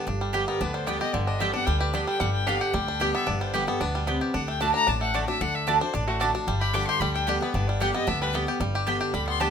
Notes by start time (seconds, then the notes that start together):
0.07 G1 G2 D4
0.21 G3
0.33 D3 G3 B3 G4 D5 G5
0.47 B3 A#4
0.61 D2 D3 D4 B4
0.74 G3 C5
0.86 D3 G3 B3 G4 D5 G5
0.99 B3 G4 D#5
1.13 G1 G2 D3 D5
1.26 D4 D#5
1.39 D3 G3 B3 G4 D5 E5 G5
1.54 B3 D4 G4 F#5
1.66 D2 D3 G3 G5
1.80 G4 B4
1.93 D3 G3 B3 D4 G4 D5 G5
2.07 G3 G5
2.20 G1 G2 G3 F#5
2.33 G5
2.47 D3 G3 B3 D4 G4 D5 F5 G5
2.61 G4 F#5
2.73 D2 D3 G3 G5
2.88 D4
3.00 D3 G3 B3 G4 D5 G5
3.14 B3 E5
3.27 G1 G2 D4 D5
3.40 G3 C5
3.54 D3 G3 B3 G4 B4 D5 G5
3.67 B3 G4 A4
3.81 D2 B2 D4 B4
3.95 G3
4.07 C3 B3 G4 D5 G5
4.21 G4
4.34 D2 D3 D4 F#5
4.48 A3 G5
4.60 D3 A3 D4 F#4 D5 A5
4.74 D4 A#5
4.87 A1 A2 D4 A5
5.01 A3 F#5
5.14 D3 A3 D4 F#4 D5 A5
5.28 D4 F#4 E5
5.41 D2 D3 D4 F#5
5.55 E5
5.67 D3 A3 D4 F#4 D5 A5
5.81 D4 F#4 C5
5.94 A1 A2 D4 D5
6.07 A3 F#4
6.20 D3 A3 D4 F#4 D5 A5
6.34 D4 F#4
6.47 G1 G2 G3
6.60 G4 B5
6.73 D3 G3 B3 D4 G4 D5 G5 D6
6.87 G4 C6
7.00 D2 D3 G3 B5
7.14 D4 G5
7.27 D3 G3 B3 G4 D5 G5
7.41 B3 G4 B4
7.54 G1 G2 D4 B4
7.67 G3 D5
7.80 D3 G3 B3 G4 D5 F#5 G5
7.94 B3 G4 D#5
8.07 D2 D3 D4 E5
8.22 G3 B4
8.33 D3 G3 B3 G4 D5 G5
8.47 B3 G4
8.60 G1 G2 G3
8.75 G4
8.86 D3 G3 B3 D4 G4 D5 G5
9.01 G4
9.13 D2 D3 G3 B5
9.27 B3 C6
9.40 D3 G3 B3 D4 G4 D5 G5 A5